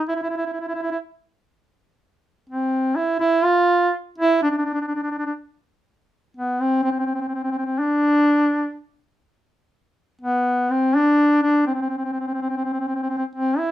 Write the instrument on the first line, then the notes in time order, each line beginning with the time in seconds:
duduk
0.08 E4
0.16 E4
0.22 E4
0.30 E4
0.37 E4
0.46 E4
0.53 E4
0.61 E4
0.68 E4
0.75 E4
0.82 E4
0.91 E4
2.50 C4
2.96 E4
3.20 E4
3.44 F4
4.18 E4
4.43 D4
4.51 D4
4.58 D4
4.65 D4
4.73 D4
4.81 D4
4.88 D4
4.95 D4
5.03 D4
5.11 D4
5.18 D4
5.26 D4
6.37 B3
6.61 C4
6.84 C4
6.91 C4
6.99 C4
7.06 C4
7.15 C4
7.21 C4
7.28 C4
7.35 C4
7.44 C4
7.52 C4
7.58 C4
7.66 C4
7.79 D4
10.22 B3
10.71 C4
10.96 D4
11.43 D4
11.67 C4
11.74 C4
11.81 C4
11.89 C4
11.98 C4
12.05 C4
12.12 C4
12.20 C4
12.27 C4
12.34 C4
12.42 C4
12.49 C4
12.57 C4
12.65 C4
12.73 C4
12.80 C4
12.88 C4
12.95 C4
13.02 C4
13.09 C4
13.18 C4
13.36 C4
13.58 E4